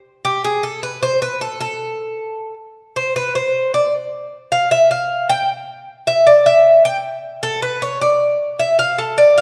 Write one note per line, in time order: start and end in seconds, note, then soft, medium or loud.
0.25 0.43 G4 medium
0.44 0.63 G#4 medium
0.63 0.82 A4 medium
0.83 1.02 B4 medium
1.03 1.21 C5 loud
1.22 1.40 B4 medium
1.41 1.59 A4 medium
1.60 2.54 A4 medium
2.96 3.15 C5 medium
3.16 3.35 B4 medium
3.35 3.71 C5 medium
3.74 3.93 D5 medium
4.52 4.71 F5 medium
4.71 4.90 E5 medium
4.91 5.27 F5 medium
5.29 5.48 G5 loud
6.07 6.26 E5 medium
6.27 6.45 D5 medium
6.46 6.82 E5 medium
6.85 6.97 G5 loud
7.43 7.62 A4 medium
7.62 7.81 B4 medium
7.82 8.01 C#5 medium
8.01 8.56 D5 medium
8.59 8.78 E5 medium
8.79 8.98 F5 loud
8.98 9.17 A4 medium
9.18 9.37 D5 medium
9.38 9.41 F5 loud